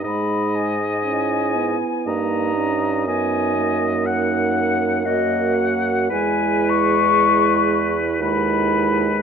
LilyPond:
<<
  \new Staff \with { instrumentName = "Flute" } { \time 3/4 \key dis \phrygian \tempo 4 = 60 b''8 gis''4. ais''4 | gis''4 fis''4 dis''8 fis''8 | gis''8 cis'''4~ cis'''16 r16 b''4 | }
  \new Staff \with { instrumentName = "Oboe" } { \time 3/4 \key dis \phrygian dis''4.~ dis''16 r16 dis''4 | dis''4 fis''4 fis''4 | b'2 b'4 | }
  \new Staff \with { instrumentName = "Clarinet" } { \time 3/4 \key dis \phrygian dis'8. r16 e'4 dis'4 | dis'4 dis'4 fis'4 | e'2 e'4 | }
  \new Staff \with { instrumentName = "French horn" } { \time 3/4 \key dis \phrygian gis8. r16 cis'8 b8 ais8 cis'8 | b8 ais4. ais4 | gis2 gis4 | }
  \new Staff \with { instrumentName = "Bassoon" } { \clef bass \time 3/4 \key dis \phrygian gis,4.~ gis,16 r16 g,4 | fis,2. | e,2 dis,4 | }
>>